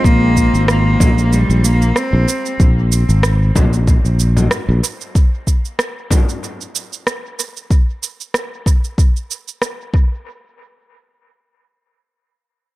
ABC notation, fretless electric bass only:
X:1
M:4/4
L:1/16
Q:"Swing 16ths" 1/4=94
K:Ab
V:1 name="Fretless electric bass" clef=bass
B,,,3 A,,,3 B,,,3 B,,,3 z B,,, z2 | B,,,3 A,,,3 B,,,3 B,,,3 z B,,, z2 | z16 | z16 |
z16 |]